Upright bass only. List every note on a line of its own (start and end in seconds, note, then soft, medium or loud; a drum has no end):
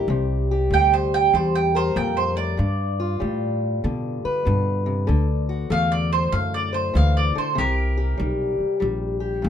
0.08 0.69 C2 medium
0.71 1.31 D2 medium
1.33 1.94 E2 medium
1.96 2.57 F2 medium
2.59 3.19 G2 medium
3.21 3.82 A2 medium
3.84 4.22 B2 medium
4.25 muted upright bass stroke soft
4.46 5.07 G2 loud
5.09 5.69 D2 medium
5.70 6.31 E2 medium
6.33 6.93 F#2 medium
6.95 7.33 D2 medium
7.36 muted upright bass stroke soft
7.58 8.18 C2 medium
8.20 8.57 B1 medium
8.60 muted upright bass stroke soft
8.82 9.42 A#1 medium
9.44 9.49 F1 medium